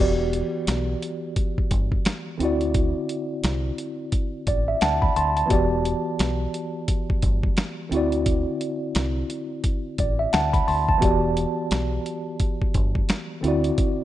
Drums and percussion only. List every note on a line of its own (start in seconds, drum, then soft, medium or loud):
0.33 closed hi-hat medium
0.67 snare loud
0.67 snare medium
0.67 closed hi-hat loud
1.02 closed hi-hat medium
1.36 kick medium
1.36 closed hi-hat medium
1.58 kick medium
1.71 kick loud
1.71 closed hi-hat medium
1.92 kick medium
2.05 snare loud
2.05 snare medium
2.05 closed hi-hat medium
2.40 closed hi-hat medium
2.61 closed hi-hat medium
2.74 kick loud
2.74 closed hi-hat medium
3.09 closed hi-hat medium
3.44 snare loud
3.44 snare medium
3.44 closed hi-hat medium
3.78 closed hi-hat medium
4.12 kick medium
4.12 closed hi-hat medium
4.47 kick loud
4.47 closed hi-hat medium
4.81 snare loud
4.81 snare medium
4.81 closed hi-hat medium
5.02 kick medium
5.16 closed hi-hat medium
5.37 closed hi-hat medium
5.50 kick loud
5.50 closed hi-hat medium
5.85 closed hi-hat medium
6.19 snare loud
6.19 snare medium
6.19 closed hi-hat loud
6.54 closed hi-hat medium
6.88 kick medium
6.88 closed hi-hat loud
7.10 kick loud
7.22 kick loud
7.22 closed hi-hat medium
7.43 kick loud
7.57 snare loud
7.57 snare medium
7.57 closed hi-hat medium
7.92 closed hi-hat medium
8.12 closed hi-hat medium
8.26 kick loud
8.26 closed hi-hat medium
8.61 closed hi-hat medium
8.95 snare loud
8.95 closed hi-hat loud
9.30 closed hi-hat medium
9.64 kick medium
9.64 closed hi-hat loud
9.98 kick loud
9.98 closed hi-hat medium
10.33 snare loud
10.33 snare medium
10.33 closed hi-hat medium
10.54 kick medium
10.54 closed hi-hat soft
10.68 open hi-hat soft
10.89 kick medium
11.02 kick loud
11.02 closed hi-hat medium
11.37 closed hi-hat medium
11.71 snare loud
11.71 snare medium
11.71 closed hi-hat loud
12.06 closed hi-hat medium
12.40 kick loud
12.40 closed hi-hat medium
12.62 kick medium
12.74 kick loud
12.74 closed hi-hat medium
12.95 kick medium
13.09 snare loud
13.09 snare medium
13.09 closed hi-hat medium
13.44 closed hi-hat medium
13.64 closed hi-hat medium
13.78 kick loud
13.78 closed hi-hat medium